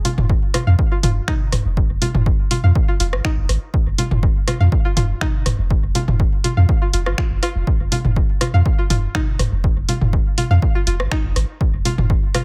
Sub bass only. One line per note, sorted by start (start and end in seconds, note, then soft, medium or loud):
0.18 0.34 F1 medium
0.67 0.75 F2 medium
1.03 1.20 F1 medium
1.52 1.61 F1 loud
1.65 1.81 F1 loud
1.90 1.98 F1 loud
2.15 2.31 F1 medium
2.64 2.72 F2 medium
3.00 3.14 F1 loud
3.13 3.21 G#1 medium
3.38 3.45 F1 medium
3.49 3.58 G#1 medium
3.87 3.94 F1 medium
4.11 4.27 F1 medium
4.60 4.68 F2 loud
4.97 5.14 F1 medium
5.46 5.55 F1 loud
5.59 5.75 F1 loud
5.84 5.91 F1 medium
6.08 6.24 F1 medium
6.57 6.65 F2 medium
6.93 7.08 F1 loud
7.06 7.14 G#1 medium
7.31 7.39 F1 loud
7.56 7.63 F1 medium
7.80 7.88 F1 loud
8.05 8.21 F1 medium
8.54 8.62 F2 medium
8.90 9.07 F1 medium
9.39 9.48 F1 loud
9.52 9.68 F1 loud
9.77 9.85 F1 loud
10.01 10.17 F1 medium
10.51 10.58 F2 medium
10.87 11.01 F1 loud
11.00 11.08 G#1 medium
11.24 11.32 F1 medium
11.36 11.45 G#1 medium
11.74 11.81 F1 medium
11.98 12.14 F1 medium